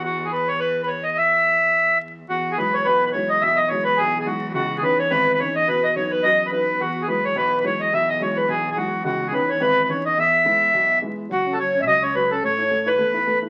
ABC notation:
X:1
M:4/4
L:1/16
Q:"Swing" 1/4=213
K:E
V:1 name="Accordion"
F3 G B2 c2 B3 B c2 d2 | e12 z4 | F3 G B2 c2 B3 B c2 d2 | e2 d2 c2 B2 G3 G F4 |
F3 G B2 c2 B3 B c2 d2 | B2 d2 c2 B2 d3 B B4 | F3 G B2 c2 B3 B c2 d2 | e2 d2 c2 B2 G3 G F4 |
F3 G B2 c2 B3 B c2 d2 | e12 z4 | F3 A c3 e d2 c2 B2 A2 | c6 B8 z2 |]
V:2 name="Flute"
z16 | z16 | F3 G B2 c2 B3 B c2 d2 | e2 d2 c2 B2 G3 G F4 |
F3 G B2 c2 B4 c2 d2 | B2 d2 c2 B2 d3 B B4 | F3 G B2 c2 B3 B c2 d2 | e2 d2 c2 B2 G4 F4 |
F3 z B2 c2 B3 B c2 d2 | e12 z4 | F4 c3 e d2 c2 B2 A2 | c6 B8 z2 |]
V:3 name="Upright piano" clef=bass
z16 | z16 | E,,4 [F,G,E]4 B,,,4 [F,G,E]4 | B,,,4 [F,G,E]4 B,,,4 [F,G,E]4 |
C,,4 [E,CD]4 G,,,4 [E,CD]4 | B,,4 [F,B,D]4 F,,4 [F,B,D]4 | E,,4 [F,G,E]4 B,,,4 [F,G,E]4 | B,,,4 [F,G,E]4 B,,,4 [F,G,E]4 |
C,,4 [E,CD]4 G,,,4 [E,CD]4 | E,,4 [G,B,E]4 B,,,4 [G,B,E]4 | F,2 C2 F,2 C2 F,2 C2 F,2 C2 | A,2 E2 A,2 E2 A,2 E2 A,2 E2 |]
V:4 name="Cello" clef=bass
E,,16- | E,,16 | E,,16- | E,,16- |
E,,16- | E,,16 | E,,16- | E,,16- |
E,,16- | E,,16 | z16 | z16 |]
V:5 name="Upright bass" clef=bass
z16 | z16 | z16 | z16 |
z16 | z16 | z16 | z16 |
z16 | z16 | F,,,8 C,,8 | A,,,8 E,,8 |]